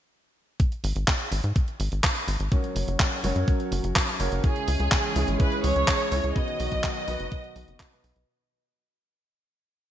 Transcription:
0.60 kick, closed hi-hat
0.72 closed hi-hat
0.84 analog synth bass G#1, open hi-hat
0.96 analog synth bass G#1, closed hi-hat
1.08 kick, clap, closed hi-hat
1.20 closed hi-hat
1.32 analog synth bass G#1, open hi-hat
1.44 analog synth bass G#2, closed hi-hat
1.56 kick, closed hi-hat
1.68 closed hi-hat
1.80 analog synth bass G#1, open hi-hat
1.92 analog synth bass G#1, closed hi-hat
2.04 kick, clap, closed hi-hat
2.16 closed hi-hat
2.28 analog synth bass G#1, open hi-hat
2.40 analog synth bass G#1, closed hi-hat
2.52 grand piano F#3 C#4 F#4 A#4 C#5, kick, closed hi-hat
2.64 closed hi-hat
2.76 analog synth bass F#1, open hi-hat
2.88 analog synth bass F#1, closed hi-hat
3.00 kick, clap, closed hi-hat
3.12 closed hi-hat
3.24 analog synth bass F#1, grand piano F#3 C#4 F#4 A#4 C#5, open hi-hat
3.36 analog synth bass F#2, closed hi-hat
3.48 kick, closed hi-hat
3.60 closed hi-hat
3.72 analog synth bass F#1, open hi-hat
3.84 analog synth bass F#1, closed hi-hat
3.96 kick, clap, closed hi-hat
4.08 closed hi-hat
4.20 analog synth bass F#1, grand piano C#3 C#4 F#4 A#4 C#5, open hi-hat
4.32 analog synth bass F#1, closed hi-hat
4.44 grand piano C#3 C#4 E4 G#4 C#5, analog synth pad E3 G#3 C#4 G#4, violin section G#4, kick, closed hi-hat
4.56 closed hi-hat
4.68 analog synth bass C#2, open hi-hat
4.80 analog synth bass C#2, closed hi-hat
4.92 kick, clap, closed hi-hat
5.04 closed hi-hat
5.16 analog synth bass C#2, grand piano C#3 C#4 E4 G#4 C#5, open hi-hat
5.28 analog synth bass G#1, closed hi-hat
5.40 violin section B4, kick, closed hi-hat
5.52 closed hi-hat
5.64 analog synth bass C#2, violin section C#5, open hi-hat
5.76 analog synth bass C#2, closed hi-hat
5.88 kick, clap
6.00 closed hi-hat
6.12 analog synth bass C#2, grand piano C#4 E4 G#4 C#5, open hi-hat
6.24 analog synth bass C#2, closed hi-hat
6.36 grand piano B2 B3 D#4 F#4 B4, analog synth pad D#3 F#3 B3 F#4, violin section D#5, kick, closed hi-hat
6.48 closed hi-hat
6.60 analog synth bass B1, open hi-hat
6.72 analog synth bass B1, kick, closed hi-hat
6.84 kick, clap, closed hi-hat
6.96 closed hi-hat
7.08 analog synth bass B1, grand piano B2 B3 D#4 F#4 B4, open hi-hat
7.20 analog synth bass F#1, closed hi-hat
7.32 kick, closed hi-hat
7.44 closed hi-hat
7.56 analog synth bass B1, open hi-hat
7.68 analog synth bass F#1, closed hi-hat
7.80 grand piano B2 B3 D#4 D#5, kick, clap
7.92 grand piano B2 B3 D#4 F#4 B4, closed hi-hat
8.04 analog synth bass B1, open hi-hat
8.16 analog synth bass B1, closed hi-hat

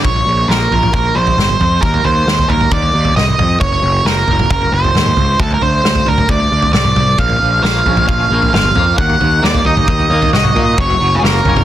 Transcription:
0.04 picked electric bass A#1, lead electric guitar C#5, kick, floor tom
0.16 floor tom
0.26 picked electric bass A#1
0.48 picked electric bass A#1, lead electric guitar A#4, snare
0.71 picked electric bass A#1, floor tom
0.83 floor tom, mid tom
0.93 picked electric bass A#1, lead electric guitar A#4, kick, floor tom
1.05 floor tom
1.15 picked electric bass A#1, lead electric guitar C5
1.27 floor tom
1.37 picked electric bass G1, snare, mid tom
1.49 mid tom
1.60 picked electric bass F2, floor tom
1.82 picked electric bass D#2, lead electric guitar A#4, kick, floor tom
1.94 floor tom
2.04 picked electric bass D#2, lead electric guitar C5, floor tom
2.27 picked electric bass D#2, snare
2.39 floor tom
2.49 picked electric bass D#2, lead electric guitar A#4, floor tom
2.61 floor tom, mid tom
2.71 picked electric bass D#2, lead electric guitar D5, kick, floor tom
2.82 floor tom
2.94 picked electric bass D#2
3.05 floor tom
3.15 picked electric bass C2, lead electric guitar D#5, snare, mid tom
3.28 mid tom
3.38 picked electric bass F2, floor tom, mid tom
3.60 picked electric bass F#1, lead electric guitar C#5, kick, floor tom
3.72 floor tom
3.82 picked electric bass F#1
4.05 picked electric bass F#1, lead electric guitar A#4, snare
4.27 picked electric bass F#1, floor tom
4.39 floor tom, mid tom
4.50 picked electric bass F#1, lead electric guitar A#4, kick, floor tom
4.62 floor tom
4.72 picked electric bass F#1, lead electric guitar C5
4.84 floor tom
4.94 picked electric bass D#2, snare, mid tom
5.06 mid tom
5.17 picked electric bass C#2, floor tom
5.39 picked electric bass D2, lead electric guitar A4, kick, floor tom
5.51 lead electric guitar A#4, floor tom
5.61 picked electric bass D2, lead electric guitar C5, floor tom
5.84 picked electric bass D2, snare
5.95 floor tom
6.06 picked electric bass D2, lead electric guitar A#4, floor tom
6.18 floor tom, mid tom
6.29 picked electric bass D2, lead electric guitar D5, kick, floor tom
6.40 floor tom
6.52 picked electric bass D2
6.62 floor tom
6.73 picked electric bass C2, lead electric guitar D5, snare, mid tom
6.85 mid tom
6.96 picked electric bass C2, floor tom, mid tom
7.18 picked electric bass A#1, clean electric guitar A#2, lead electric guitar F5, kick, floor tom
7.30 floor tom
7.41 picked electric bass A#1, clean electric guitar F3
7.63 picked electric bass A#1, clean electric guitar A#3, lead electric guitar F5, snare
7.85 picked electric bass A#1, clean electric guitar C#4, floor tom
7.97 floor tom, mid tom
8.08 picked electric bass A#1, clean electric guitar F3, lead electric guitar F5, kick, floor tom
8.20 floor tom
8.30 picked electric bass A#1, clean electric guitar A#3
8.42 floor tom
8.53 picked electric bass G1, clean electric guitar F4, lead electric guitar F5, snare, mid tom
8.64 mid tom
8.75 picked electric bass F2, clean electric guitar A#3, floor tom
8.98 picked electric bass D#2, clean electric guitar D#3, lead electric guitar F#5, kick, floor tom
9.10 floor tom
9.20 picked electric bass D#2, clean electric guitar D#3, floor tom
9.43 picked electric bass D#2, clean electric guitar A#3, lead electric guitar D5, snare
9.54 floor tom
9.65 picked electric bass D#2, clean electric guitar D#4, lead electric guitar D#5, floor tom
9.77 floor tom, mid tom
9.87 picked electric bass D#2, clean electric guitar D#3, kick, floor tom
9.99 floor tom
10.10 picked electric bass D#2, clean electric guitar A#3
10.22 floor tom
10.33 picked electric bass C2, clean electric guitar F#4, lead electric guitar D#5, snare, mid tom
10.44 mid tom
10.55 picked electric bass A#2, clean electric guitar A#3, floor tom, mid tom
10.78 picked electric bass F#1, clean electric guitar F#3, lead electric guitar C#5, kick, floor tom
10.90 floor tom
11.00 picked electric bass F#1, clean electric guitar F#3
11.16 lead electric guitar G#4
11.22 picked electric bass F#1, clean electric guitar A#3, lead electric guitar A#4, snare
11.45 picked electric bass F#1, clean electric guitar C#4, floor tom
11.56 floor tom, mid tom

